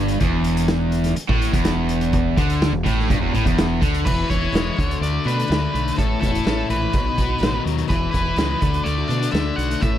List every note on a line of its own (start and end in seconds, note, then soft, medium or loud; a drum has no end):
0.00 0.17 G1 medium
0.00 0.20 G2 loud
0.08 closed hi-hat medium
0.20 1.13 E1 medium
0.20 1.15 E2 loud
0.20 kick loud
0.20 closed hi-hat medium
0.44 closed hi-hat medium
0.57 closed hi-hat medium
0.68 snare loud
0.68 closed hi-hat medium
0.92 closed hi-hat medium
1.04 snare soft
1.04 closed hi-hat medium
1.16 muted overdriven electric guitar stroke medium
1.16 muted fingered electric bass stroke soft
1.16 closed hi-hat medium
1.29 1.51 A1 medium
1.29 1.52 A2 medium
1.29 kick loud
1.42 closed hi-hat medium
1.52 2.33 E1 medium
1.52 2.36 E2 medium
1.52 kick loud
1.52 closed hi-hat medium
1.65 snare medium
1.65 closed hi-hat medium
1.89 closed hi-hat medium
2.01 closed hi-hat medium
2.13 kick medium
2.13 closed hi-hat medium
2.37 2.71 D2 medium
2.37 2.72 D3 medium
2.37 kick medium
2.37 closed hi-hat medium
2.50 closed hi-hat medium
2.62 snare loud
2.62 closed hi-hat medium
2.73 2.84 E1 medium
2.73 2.85 E2 medium
2.84 3.08 A1 medium
2.84 3.08 A2 loud
2.84 kick loud
2.84 closed hi-hat medium
2.99 snare soft
3.10 3.21 G1 loud
3.10 3.21 G2 loud
3.10 kick loud
3.10 closed hi-hat medium
3.22 3.32 E1 medium
3.22 3.33 E2 medium
3.33 3.44 A1 medium
3.33 3.45 A2 medium
3.33 closed hi-hat medium
3.45 3.79 E1 medium
3.45 3.80 E2 loud
3.45 kick medium
3.45 closed hi-hat medium
3.58 snare loud
3.58 closed hi-hat medium
3.81 4.04 D2 medium
3.81 4.04 D3 loud
3.81 kick loud
3.81 closed hi-hat medium
3.94 closed hi-hat medium
4.05 4.23 E1 medium
4.05 4.29 E2 medium
4.05 4.29 B2 medium
4.05 4.77 E3 medium
4.05 4.27 E3 medium
4.05 4.28 G#3 medium
4.05 4.29 B3 medium
4.05 4.30 E4 medium
4.05 4.27 B4 medium
4.05 kick loud
4.05 crash medium
4.28 4.47 E1 medium
4.28 4.41 E3 medium
4.28 4.41 G#3 medium
4.28 4.40 B3 medium
4.28 4.77 E4 medium
4.28 4.40 E4 medium
4.28 4.98 C#5 loud
4.28 kick medium
4.28 closed hi-hat medium
4.41 4.52 E3 soft
4.41 4.52 G#3 soft
4.41 4.53 B3 soft
4.41 4.53 E4 soft
4.52 4.69 E1 medium
4.52 4.77 E2 medium
4.52 4.77 B2 medium
4.52 4.76 E3 medium
4.52 4.76 G#3 medium
4.52 4.78 G#3 medium
4.52 4.77 B3 medium
4.52 4.77 E4 medium
4.52 snare loud
4.52 closed hi-hat medium
4.76 4.95 D2 medium
4.76 4.89 D3 medium
4.76 5.49 D3 medium
4.76 4.89 A3 medium
4.76 4.88 D4 medium
4.76 4.86 F#4 medium
4.76 kick medium
4.76 closed hi-hat soft
4.87 5.14 A3 soft
4.87 5.13 D4 soft
4.87 5.11 F#4 medium
4.87 closed hi-hat medium
5.01 5.18 D2 medium
5.01 5.72 A3 medium
5.01 5.24 D5 medium
5.01 closed hi-hat medium
5.12 5.24 A3 soft
5.12 5.25 D4 soft
5.12 5.25 F#4 soft
5.24 5.42 B2 medium
5.24 5.37 D3 medium
5.24 5.36 A3 medium
5.24 5.97 D4 medium
5.24 5.35 D4 medium
5.24 5.34 F#4 medium
5.24 5.98 B4 medium
5.24 closed hi-hat medium
5.35 5.46 A3 soft
5.35 5.47 D4 soft
5.35 5.47 F#4 soft
5.39 closed hi-hat medium
5.47 5.66 D2 medium
5.47 5.60 D3 medium
5.47 5.98 D3 medium
5.47 5.59 A3 medium
5.47 5.58 D4 medium
5.47 5.57 F#4 medium
5.52 snare loud
5.52 closed hi-hat medium
5.58 5.95 A3 soft
5.58 5.96 F#4 soft
5.73 5.91 B1 medium
5.73 5.97 A3 medium
5.73 closed hi-hat medium
5.88 closed hi-hat medium
5.95 6.15 A1 medium
5.95 6.20 A2 medium
5.95 6.93 A2 medium
5.95 6.19 E3 medium
5.95 6.20 A3 medium
5.95 6.21 C#4 medium
5.95 6.21 E4 medium
5.95 6.20 A4 medium
5.95 kick medium
5.95 closed hi-hat medium
6.20 6.39 E1 medium
6.20 6.33 E3 medium
6.20 6.33 A3 medium
6.20 6.32 C#4 medium
6.20 6.93 E4 medium
6.20 6.30 E4 medium
6.20 6.66 A4 medium
6.20 kick medium
6.20 closed hi-hat medium
6.31 6.43 A3 soft
6.31 6.44 C#4 soft
6.31 6.43 E4 soft
6.35 closed hi-hat medium
6.43 6.62 A1 medium
6.43 6.68 A2 medium
6.43 6.66 E3 medium
6.43 6.68 A3 medium
6.43 6.94 A3 medium
6.43 6.69 C#4 medium
6.43 6.69 E4 medium
6.43 snare loud
6.43 closed hi-hat medium
6.68 6.86 A#1 medium
6.68 6.81 E3 medium
6.68 6.93 E3 medium
6.68 6.81 A3 medium
6.68 6.81 C#4 medium
6.68 6.78 E4 medium
6.68 7.62 B4 medium
6.68 closed hi-hat medium
6.79 6.94 A3 soft
6.79 6.94 C#4 soft
6.79 6.92 E4 medium
6.92 7.10 B1 medium
6.92 7.05 B2 medium
6.92 7.90 B2 medium
6.92 7.06 F#3 medium
6.92 7.06 B3 medium
6.92 7.05 D#4 medium
6.92 7.04 F#4 medium
6.92 kick loud
6.92 closed hi-hat medium
7.05 7.16 B3 soft
7.05 7.16 D#4 soft
7.05 7.17 F#4 medium
7.16 7.35 B1 medium
7.16 7.29 F#3 medium
7.16 7.28 B3 medium
7.16 7.90 B3 medium
7.16 7.27 D#4 medium
7.16 7.26 F#4 medium
7.16 kick medium
7.16 closed hi-hat soft
7.27 7.39 B3 soft
7.27 7.39 D#4 medium
7.27 7.40 F#4 medium
7.38 7.58 A1 medium
7.38 7.52 B2 medium
7.38 7.89 D#3 medium
7.38 7.52 F#3 medium
7.38 7.53 B3 medium
7.38 7.52 D#4 medium
7.38 7.50 F#4 medium
7.43 snare loud
7.43 closed hi-hat medium
7.51 7.77 B3 soft
7.51 7.76 D#4 soft
7.51 7.74 F#4 medium
7.65 7.82 D#2 medium
7.65 7.89 F#3 medium
7.65 closed hi-hat medium
7.75 7.88 B3 soft
7.75 7.89 D#4 soft
7.75 7.88 F#4 soft
7.75 closed hi-hat medium
7.88 8.06 E1 medium
7.88 8.13 E2 medium
7.88 8.13 B2 medium
7.88 8.10 E3 medium
7.88 8.61 E3 medium
7.88 8.12 G#3 medium
7.88 8.12 B3 medium
7.88 8.14 G#4 medium
7.88 8.10 B4 medium
7.88 kick loud
7.88 closed hi-hat medium
8.11 8.31 E1 medium
8.11 8.25 E3 medium
8.11 8.25 G#3 medium
8.11 8.24 B3 medium
8.11 8.61 E4 medium
8.11 8.23 G#4 medium
8.11 8.87 B4 medium
8.11 kick medium
8.11 closed hi-hat medium
8.24 8.36 E3 soft
8.24 8.37 G#3 soft
8.24 8.36 B3 soft
8.24 8.37 G#4 soft
8.36 8.54 C#2 medium
8.36 8.61 E2 medium
8.36 8.61 B2 medium
8.36 8.60 E3 medium
8.36 8.62 G#3 medium
8.36 8.61 G#3 medium
8.36 8.62 B3 medium
8.36 8.62 G#4 medium
8.36 snare loud
8.36 closed hi-hat medium
8.61 8.79 D2 medium
8.61 8.73 D3 medium
8.61 9.31 D3 medium
8.61 8.74 A3 medium
8.61 8.74 D4 medium
8.61 8.72 F#4 medium
8.61 kick medium
8.61 closed hi-hat medium
8.73 8.99 A3 soft
8.73 8.97 D4 soft
8.73 8.96 F#4 soft
8.73 closed hi-hat medium
8.84 9.03 D2 medium
8.84 9.55 A3 medium
8.84 9.29 D5 medium
8.84 closed hi-hat medium
8.97 9.08 A3 soft
8.97 9.09 D4 soft
8.97 9.10 F#4 medium
9.08 9.26 B2 medium
9.08 9.21 D3 medium
9.08 9.21 A3 medium
9.08 9.81 D4 medium
9.08 9.20 D4 medium
9.08 9.18 F#4 medium
9.08 closed hi-hat medium
9.20 9.30 A3 soft
9.20 9.31 D4 soft
9.20 9.32 F#4 medium
9.20 closed hi-hat medium
9.31 9.50 D2 medium
9.31 9.44 D3 medium
9.31 9.81 D3 medium
9.31 9.45 A3 medium
9.31 9.44 D4 medium
9.31 9.43 F#4 medium
9.31 9.55 E5 medium
9.31 snare loud
9.31 closed hi-hat medium
9.44 9.69 A3 soft
9.44 9.69 D4 soft
9.44 9.67 F#4 soft
9.56 9.74 B1 medium
9.56 9.81 A3 medium
9.56 9.82 F#5 medium
9.56 closed hi-hat medium
9.68 9.80 A3 soft
9.68 9.82 D4 soft
9.68 9.81 F#4 soft
9.68 closed hi-hat medium
9.80 9.98 A1 medium
9.80 9.98 A2 medium
9.80 9.98 E3 medium
9.80 9.98 A3 medium
9.80 9.98 C#4 medium
9.80 9.98 A4 medium
9.80 9.98 E5 medium
9.80 kick loud
9.80 closed hi-hat medium